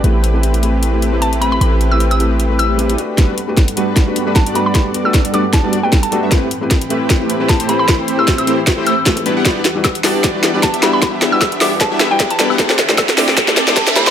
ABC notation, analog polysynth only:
X:1
M:4/4
L:1/16
Q:"Swing 16ths" 1/4=153
K:G
V:1 name="Analog polysynth"
[A,CEGB]16- | [A,CEGB]12- [A,CEGB]2 z2 | [G,B,DFB]2 z4 [G,B,DFB]4- [G,B,DFB] [G,B,DFB]2 [G,B,DFd]3- | [G,B,DFd]6 [G,B,DFd] z2 [G,B,DFd]2 z [G,B,DFA] z [G,B,DFA] [G,B,DFe] |
[A,CEGB]2 z4 [A,CEGB]4- [A,CEGB] [A,CEGB]2 [A,CEGc]3- | [A,CEGc]6 [A,CEGc] z2 [A,CEGc]2 z [A,CEGA] z [B,DEGB] [B,DEGf] | [B,DEGd]2 z4 [B,DEGd]4- [B,DEGd] [B,DEGd]2 [B,DEGe]3- | [B,DEGe]6 [B,DEGe] z2 [B,DEGe]2 z [B,DEGB] z [B,DEGB] [B,DEGf] |
[CDGAd]2 z4 [CDGAd]4- [CDGAd] [CDGAd]2 [CDGAe]3 |]